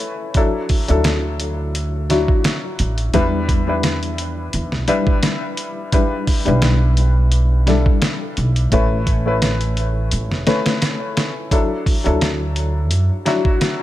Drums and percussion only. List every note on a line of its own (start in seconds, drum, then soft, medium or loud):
0.00 closed hi-hat medium
0.34 kick loud
0.34 closed hi-hat medium
0.69 kick medium
0.69 open hi-hat medium
0.88 closed hi-hat soft
1.04 snare loud
1.04 closed hi-hat medium
1.40 closed hi-hat medium
1.75 closed hi-hat medium
2.10 snare medium
2.10 closed hi-hat medium
2.28 kick loud
2.44 snare loud
2.44 closed hi-hat medium
2.79 closed hi-hat medium
2.98 closed hi-hat soft
3.14 kick loud
3.14 closed hi-hat medium
3.49 kick medium
3.49 closed hi-hat medium
3.83 snare loud
3.83 closed hi-hat medium
4.03 closed hi-hat soft
4.18 closed hi-hat medium
4.53 closed hi-hat medium
4.72 snare soft
4.88 closed hi-hat medium
5.07 kick loud
5.23 snare loud
5.23 closed hi-hat medium
5.57 closed hi-hat medium
5.92 kick loud
5.92 closed hi-hat medium
6.27 kick medium
6.27 open hi-hat medium
6.46 closed hi-hat soft
6.62 snare loud
6.62 closed hi-hat medium
6.97 closed hi-hat medium
7.32 closed hi-hat medium
7.67 snare medium
7.67 closed hi-hat medium
7.86 kick loud
8.02 snare loud
8.02 closed hi-hat medium
8.37 closed hi-hat medium
8.56 closed hi-hat soft
8.72 kick loud
8.72 closed hi-hat medium
9.07 kick medium
9.07 closed hi-hat medium
9.42 snare loud
9.42 closed hi-hat medium
9.61 closed hi-hat soft
9.77 closed hi-hat medium
10.11 closed hi-hat medium
10.32 snare soft
10.47 snare loud
10.47 closed hi-hat medium
10.66 snare loud
10.66 closed hi-hat medium
10.82 snare loud
10.82 closed hi-hat medium
11.17 snare loud
11.17 closed hi-hat medium
11.51 kick loud
11.51 closed hi-hat medium
11.86 kick loud
11.86 open hi-hat medium
12.06 closed hi-hat soft
12.21 snare loud
12.21 closed hi-hat medium
12.56 closed hi-hat medium
12.91 closed hi-hat medium
13.26 snare medium
13.26 closed hi-hat medium
13.45 kick loud
13.61 snare loud
13.61 closed hi-hat medium